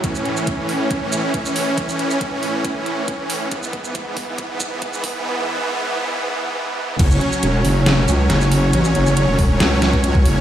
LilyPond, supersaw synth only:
\new Staff \with { instrumentName = "Supersaw synth" } { \clef bass \time 4/4 \key fis \minor \tempo 4 = 138 <a, e cis'>1~ | <a, e cis'>1 | <gis, e b>1~ | <gis, e b>1 |
<fis cis' cis''>1~ | <fis cis' cis''>1 | }